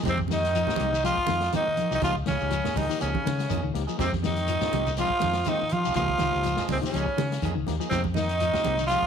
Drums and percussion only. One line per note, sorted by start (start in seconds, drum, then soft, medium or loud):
0.03 kick medium
0.03 closed hi-hat medium
0.03 low conga medium
0.03 shekere medium
0.17 kick medium
0.17 high conga medium
0.28 snare medium
0.28 closed hi-hat soft
0.28 high conga medium
0.28 shekere medium
0.45 snare soft
0.45 closed hi-hat soft
0.45 shekere soft
0.55 closed hi-hat medium
0.55 shekere medium
0.67 snare medium
0.67 low conga medium
0.67 shekere medium
0.76 closed hi-hat medium
0.76 high conga medium
0.81 shekere soft
0.95 shekere medium
1.04 closed hi-hat medium
1.04 shekere medium
1.17 kick medium
1.27 snare medium
1.27 closed hi-hat medium
1.27 high conga medium
1.41 snare medium
1.41 closed hi-hat medium
1.41 shekere soft
1.52 closed hi-hat medium
1.52 high conga medium
1.52 shekere medium
1.77 closed hi-hat medium
1.77 high conga medium
1.77 shekere soft
1.92 shekere medium
2.01 kick medium
2.01 closed hi-hat medium
2.01 low conga medium
2.01 shekere medium
2.15 kick medium
2.26 snare medium
2.26 closed hi-hat medium
2.26 high conga medium
2.26 shekere medium
2.40 shekere soft
2.50 closed hi-hat medium
2.50 shekere medium
2.64 snare medium
2.64 low conga medium
2.64 shekere medium
2.76 kick medium
2.76 open hi-hat medium
2.76 high conga medium
2.76 shekere soft
2.91 shekere medium
3.01 closed hi-hat medium
3.01 shekere medium
3.14 kick medium
3.14 high conga medium
3.26 snare medium
3.26 closed hi-hat medium
3.26 high conga medium
3.39 snare medium
3.39 closed hi-hat medium
3.39 shekere soft
3.50 kick medium
3.50 closed hi-hat medium
3.50 high conga medium
3.50 shekere medium
3.75 snare soft
3.75 closed hi-hat medium
3.75 shekere soft
3.88 shekere medium
3.99 kick medium
3.99 snare soft
3.99 closed hi-hat medium
3.99 low conga medium
3.99 shekere medium
4.12 kick medium
4.12 snare soft
4.12 high conga medium
4.24 snare medium
4.24 closed hi-hat soft
4.24 high conga medium
4.24 shekere medium
4.36 snare soft
4.36 closed hi-hat medium
4.36 shekere soft
4.48 closed hi-hat medium
4.48 shekere medium
4.61 snare medium
4.61 low conga medium
4.61 shekere medium
4.73 closed hi-hat soft
4.73 high conga medium
4.73 shekere soft
4.87 low conga medium
4.87 shekere medium
4.97 closed hi-hat medium
4.97 shekere medium
5.10 kick medium
5.20 snare medium
5.20 closed hi-hat soft
5.20 high conga medium
5.33 snare medium
5.33 closed hi-hat soft
5.33 shekere soft
5.44 closed hi-hat medium
5.44 high conga medium
5.44 shekere medium
5.69 closed hi-hat medium
5.69 high conga medium
5.69 shekere soft
5.85 shekere medium
5.94 kick medium
5.94 closed hi-hat medium
5.94 low conga medium
5.94 shekere medium
6.08 kick medium
6.08 high conga medium
6.18 snare medium
6.18 closed hi-hat soft
6.18 high conga medium
6.18 shekere medium
6.35 shekere soft
6.43 closed hi-hat medium
6.43 shekere medium
6.56 snare medium
6.56 low conga medium
6.56 shekere medium
6.68 kick medium
6.68 open hi-hat medium
6.68 high conga medium
6.68 shekere soft
6.83 low conga medium
6.83 shekere medium
6.94 closed hi-hat medium
6.94 shekere medium
7.06 kick medium
7.18 snare medium
7.18 closed hi-hat medium
7.18 high conga medium
7.32 snare medium
7.32 closed hi-hat medium
7.32 shekere soft
7.42 kick medium
7.42 closed hi-hat medium
7.42 high conga medium
7.42 shekere medium
7.67 snare soft
7.67 closed hi-hat medium
7.67 high conga medium
7.67 shekere soft
7.81 shekere medium
7.91 kick medium
7.91 closed hi-hat medium
7.91 low conga medium
7.91 shekere medium
8.04 kick medium
8.04 high conga medium
8.14 snare medium
8.14 closed hi-hat medium
8.14 high conga medium
8.14 shekere medium
8.29 closed hi-hat medium
8.29 shekere soft
8.40 closed hi-hat medium
8.40 shekere medium
8.54 snare medium
8.54 low conga medium
8.54 shekere medium
8.64 closed hi-hat medium
8.64 high conga medium
8.64 shekere soft
8.79 shekere medium
8.88 closed hi-hat medium
8.88 shekere medium
9.03 kick medium